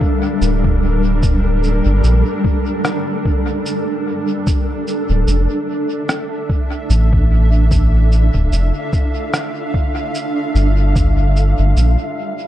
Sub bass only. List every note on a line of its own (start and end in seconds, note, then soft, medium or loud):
0.41 1.81 D1 medium
1.86 2.02 G1 loud
2.04 2.24 A#1 medium
5.09 5.26 D1 medium
5.27 5.48 F1 medium
6.90 8.30 A1 medium
8.34 8.50 D1 medium
8.52 8.72 F1 medium
10.55 11.54 G1 medium
11.59 11.75 G1 medium
11.77 11.96 A#1 medium